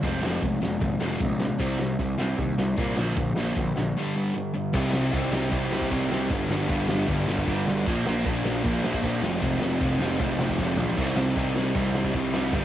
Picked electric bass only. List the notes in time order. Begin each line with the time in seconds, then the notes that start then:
0.03 F1
0.23 F1
0.42 F1
0.62 F1
0.81 G#1
1.01 F1
1.20 A#1
1.59 C2
1.79 C2
1.99 C2
2.18 C2
2.38 D#2
2.58 C2
2.78 A#2
2.97 A#1
3.17 A#1
3.35 A#1
3.56 A#1
3.76 A#1
4.74 C2
5.13 C2
5.52 C2
5.92 C2
6.30 G1
6.49 G1
6.69 G1
6.89 G1
7.08 G1
7.28 G1
7.47 G1
7.67 G1
7.87 A#1
8.26 A#1
8.64 A#1
9.03 A#1
9.22 F1
9.42 F1
9.61 F1
9.81 F1
9.99 F1
10.20 F1
10.38 F1
10.58 F1
10.76 A#1
10.98 C2
11.36 C2
11.75 C2
12.14 C2
12.53 G1